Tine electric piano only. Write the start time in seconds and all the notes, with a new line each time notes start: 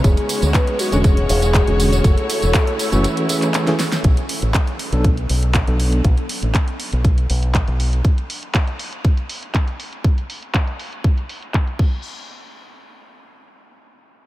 0.92 D3 G#3 C#4 F#4
1.67 D3 G#3 C#4 F#4
2.92 E3 A3 C#4 F#4
3.29 E3 A3 C#4 G#4
3.67 E3 A3 C#4 G#4
4.92 F#3 B3 D4 A4
5.67 F#3 B3 D4 A4